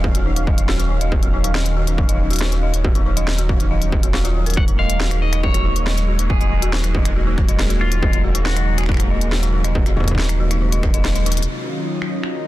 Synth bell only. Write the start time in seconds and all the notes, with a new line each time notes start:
Already playing: D#4 F#4 D#5
0.15 F#4
0.26 D#4
0.36 D#4
0.47 D#5
0.69 F#4
0.79 D#4
0.90 D#4
1.01 D#5
1.23 F#4
1.33 D#4
1.44 D#4
1.55 D#5
1.77 F#4
1.87 D#4
1.98 D#4
2.09 D#5
2.31 F#4
2.41 D#4
2.52 D#4
2.63 D#5
2.84 F#4
2.95 D#4
3.06 D#4
3.17 D#5
3.38 F#4
3.49 D#4
3.60 D#4
3.71 D#5
3.92 D#5
4.03 F#4
4.14 D#4
4.25 F4
4.46 A#4
4.57 D#4
4.68 D#4
4.79 D#5
5.00 F#4
5.11 D#4
5.22 D#4
5.33 D#5
5.54 F#4
5.65 D#4
5.76 D#4
5.87 D#5
6.08 F#4
6.19 D#4
6.30 D#4
6.41 D#5
6.62 F#4
6.73 D#4
6.84 D#4
6.94 D#5
7.16 F#4
7.27 D#4
7.38 D#4
7.49 D#5
7.70 F#4
7.81 D#4
7.92 D#4
8.03 D#5
8.24 F#4
8.35 D#4
8.46 D#4
8.56 D#5
8.78 F#4
8.89 D#4
9.00 D#4
9.10 D#5
9.32 F#4
9.43 D#4
9.54 D#4
9.64 D#5
9.86 F#4
9.97 D#4
10.07 D#4
10.18 D#5
10.40 F#4
10.51 D#4
10.62 D#4
10.72 D#5
10.83 D#4
10.94 D#5
11.05 D#5
11.16 D#5
11.26 D#4